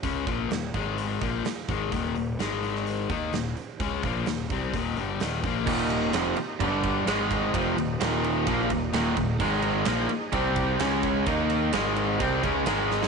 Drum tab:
CC |----------------|----------------|----------------|x---------------|
RD |----------------|----------------|----------------|--x-x-x-x-x-x-x-|
HH |o-o-o-o-o-o-o-o-|o-o-o-o-o-o-o-o-|o-o-o-o-o-o-o-o-|----------------|
SD |----o-------o---|----o--o----o---|----o-------o---|----o-------o---|
BD |o-o---o---o---o-|o---------o-----|o-o---o-o-----o-|o-------o-o---o-|

CC |----------------|x---------------|----------------|
RD |x-x-x-x-x-x-x-x-|--x-x-x-x-x-x-x-|x-x-x-x-x-x-x---|
HH |----------------|----------------|----------------|
SD |----o-------o---|----o-------o---|----o-------o-oo|
BD |o-------o-o---o-|o-------o-o---o-|o-------o-o-----|